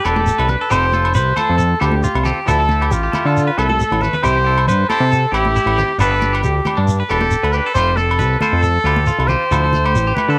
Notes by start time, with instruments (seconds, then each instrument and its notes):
Already playing: clean electric guitar B4
0.05 analog synth bass E1, clean electric guitar D4 G4, trumpet A4, low agogo, shekere
0.16 clean electric guitar G4, high conga
0.27 shekere
0.38 analog synth bass C2, clean electric guitar B4, low agogo
0.48 clean electric guitar D4, trumpet B4, muted clean electric guitar stroke, low conga, shekere
0.61 clean electric guitar A4
0.70 analog synth bass F1, clean electric guitar F3 C4 G4 A4, trumpet C5, muted clean electric guitar stroke, low agogo, shekere
0.92 clean electric guitar F4 A4, muted clean electric guitar stroke, high conga, shekere
0.97 clean electric guitar C4
1.05 low agogo
1.15 analog synth bass C2, clean electric guitar B4, trumpet C5, low conga, shekere
1.36 clean electric guitar F4 A4 C5, trumpet A4, high conga, low conga, low agogo, shekere
1.49 analog synth bass F2
1.58 clean electric guitar A4, shekere
1.80 analog synth bass D2, clean electric guitar C4 F4 G4 A4, trumpet G4, low agogo, shekere
1.91 high conga
2.04 clean electric guitar F4, shekere
2.15 analog synth bass C2, low agogo
2.23 clean electric guitar C4 F4 G4 A4, low conga, shekere
2.46 analog synth bass D2, clean electric guitar F3 A3 E4 A4, trumpet A4, low agogo, shekere
2.60 clean electric guitar A4
2.69 clean electric guitar A3 E4 A4, high conga, low conga, shekere
2.81 clean electric guitar G4, low agogo
2.91 analog synth bass A1, trumpet F4, low conga, shekere
3.03 clean electric guitar G4
3.12 clean electric guitar A3 E4 A4, high conga, low conga, low agogo, shekere
3.25 analog synth bass D3, clean electric guitar A4
3.37 shekere
3.47 clean electric guitar B4
3.58 analog synth bass C2, clean electric guitar A3 A4, trumpet A4, low agogo, shekere
3.69 clean electric guitar A4, high conga
3.80 shekere
3.91 analog synth bass A1, high conga, low agogo
4.01 clean electric guitar A3 A4, trumpet B4, muted clean electric guitar stroke, low conga, shekere
4.13 clean electric guitar B4, low conga
4.22 analog synth bass C2, clean electric guitar E3 C4 E4 G4, trumpet C5, low agogo, shekere
4.45 clean electric guitar C4 E4 G4 A4
4.58 low agogo
4.67 analog synth bass G2, clean electric guitar B4, trumpet C5, low conga, shekere
4.89 clean electric guitar C4 E4 G4 C5, trumpet A4, high conga, low agogo, shekere
5.00 analog synth bass C3
5.12 clean electric guitar A4, shekere
5.32 analog synth bass A1, clean electric guitar C4 E4 G4, trumpet G4, low agogo, shekere
5.45 high conga
5.56 clean electric guitar E4, shekere
5.66 analog synth bass A1, low agogo
5.76 clean electric guitar C4 E4 G4, low conga, shekere
5.98 analog synth bass G1, clean electric guitar B3 D4 G4 A4, trumpet B4, low agogo, shekere
6.11 clean electric guitar A4
6.20 clean electric guitar D4 G4, high conga, shekere
6.33 clean electric guitar G4, low agogo
6.43 analog synth bass D2, trumpet G4, low conga, shekere
6.65 clean electric guitar D4 G4, high conga, low conga, low agogo, shekere
6.77 analog synth bass G2, clean electric guitar D4
6.88 shekere
7.00 clean electric guitar B4
7.09 analog synth bass E1, clean electric guitar D4 G4, trumpet A4, low agogo, shekere
7.21 clean electric guitar G4, high conga
7.31 shekere
7.43 analog synth bass D2, clean electric guitar B4, low agogo
7.52 clean electric guitar G4, trumpet B4, shekere
7.56 clean electric guitar D4
7.66 clean electric guitar A4
7.74 analog synth bass F1, clean electric guitar A3 F4 G4, trumpet C5, muted clean electric guitar stroke, low agogo, shekere
7.96 trumpet A4, clean electric guitar A4, muted clean electric guitar stroke, high conga, shekere
8.00 clean electric guitar C4
8.11 low agogo
8.19 analog synth bass C2, clean electric guitar B4, low conga, shekere
8.39 clean electric guitar F4 C5, trumpet A4, high conga, low conga, low agogo, shekere
8.44 clean electric guitar C4
8.53 analog synth bass F2
8.63 clean electric guitar A4, shekere
8.84 analog synth bass D2, clean electric guitar F4 G4, low agogo, shekere
8.96 high conga
9.07 clean electric guitar F4, shekere
9.19 analog synth bass C2, low agogo
9.27 clean electric guitar F4 G4, trumpet C5, low conga, shekere
9.32 clean electric guitar C4
9.51 analog synth bass D2, clean electric guitar F3 E4 A4, muted clean electric guitar stroke, low agogo, shekere
9.64 clean electric guitar A4
9.72 clean electric guitar A3, muted clean electric guitar stroke, high conga, low conga, shekere
9.85 clean electric guitar G4, low agogo
9.95 analog synth bass A1, shekere
10.07 clean electric guitar G4
10.15 clean electric guitar E4, trumpet B4, high conga, low conga, low agogo, shekere
10.19 clean electric guitar A3
10.28 analog synth bass D3, clean electric guitar A4